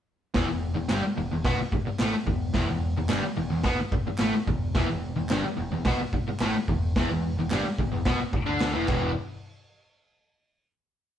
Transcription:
0.34 E1 E2 E3, kick, snare, open hi-hat
0.48 E1 E2
0.75 E1 E2
0.89 G1 G2 G3, snare, clap, open hi-hat
1.04 muted distorted electric guitar stroke, muted picked electric bass stroke
1.18 E1 E2
1.32 E1 E2
1.45 B1 B2 B3, kick, snare, open hi-hat
1.58 muted picked electric bass stroke, muted distorted electric guitar stroke
1.72 muted picked electric bass stroke, muted distorted electric guitar stroke, kick
1.87 muted distorted electric guitar stroke, muted picked electric bass stroke
1.99 A1 A2 A3, snare, clap, open hi-hat
2.13 muted distorted electric guitar stroke, muted picked electric bass stroke
2.27 E1 E2, kick
2.54 E1 E2 E3, kick, snare, open hi-hat
2.69 E1 E2
2.97 E1 E2
3.09 G1 G2 G3, snare, clap, open hi-hat
3.23 muted picked electric bass stroke, muted distorted electric guitar stroke
3.37 E1 E2
3.50 E1 E2
3.64 B1 B2 B3, kick, snare, open hi-hat
3.79 muted picked electric bass stroke, muted distorted electric guitar stroke
3.92 muted picked electric bass stroke, muted distorted electric guitar stroke, kick
4.07 muted picked electric bass stroke, muted distorted electric guitar stroke
4.18 A1 A2 A3, snare, clap, open hi-hat
4.34 muted distorted electric guitar stroke, muted picked electric bass stroke
4.47 E1 E2, kick
4.75 E1 E2 E3, kick, snare, open hi-hat
4.87 E1 E2
5.16 E1 E2
5.29 G1 G2 G3, snare, clap, open hi-hat
5.45 muted picked electric bass stroke, muted distorted electric guitar stroke
5.57 E1 E2
5.72 E1 E2
5.85 B1 B2 B3, kick, snare, open hi-hat
5.99 muted picked electric bass stroke, muted distorted electric guitar stroke
6.13 muted picked electric bass stroke, muted distorted electric guitar stroke, kick
6.27 muted picked electric bass stroke, muted distorted electric guitar stroke
6.40 A1 A2 A3, snare, clap, open hi-hat
6.55 muted picked electric bass stroke, muted distorted electric guitar stroke
6.68 E1 E2, kick
6.96 E1 E2 E3, kick, snare, open hi-hat
7.10 E1 E2
7.37 E1 E2
7.50 G1 G2 G3, snare, clap, open hi-hat
7.66 muted picked electric bass stroke, muted distorted electric guitar stroke
7.78 E1 E2, kick
7.92 E1 E2
8.05 B1 B2 B3, kick, snare, open hi-hat
8.19 muted distorted electric guitar stroke, muted picked electric bass stroke
8.33 muted picked electric bass stroke, muted distorted electric guitar stroke, kick
8.46 D2 D3 D4
8.60 snare, clap, open hi-hat
8.73 E1 E2 E3
8.88 E1 E2 B2 E3, kick, clap, crash

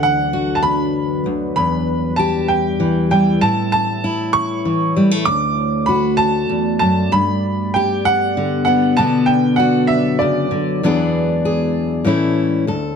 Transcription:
Already playing: D2 D3 F#3 D4 B4
0.03 F#5
0.33 F#4
0.55 A5
0.63 B5
1.26 D2
1.56 E2 G3 E4 B5
2.16 G4 A5
2.48 G5
2.80 E3
3.11 G3 G5
3.41 A2 A3 C#5 A5
3.72 A5
4.04 E4
4.33 C#6
4.65 E3
4.97 G3
5.11 A3
5.25 D2 F#4 D5 D6
5.86 F#4 B5
6.17 A5
6.49 E2
6.79 F#2 A5
7.11 G2 B3 G4 B5
7.74 G4 G5
8.05 F#5
8.37 D3
8.65 B3 F#5
8.97 B2 D3 F#3 B3 A5
9.26 G5
9.56 F#4 F#5
9.87 E5
10.19 C#3 D5
10.51 D3
10.82 E2 E3 B3 D4 E4 G#4
11.45 G#4
12.04 A2 E3 A3 C#4 E4
12.67 D2 A4

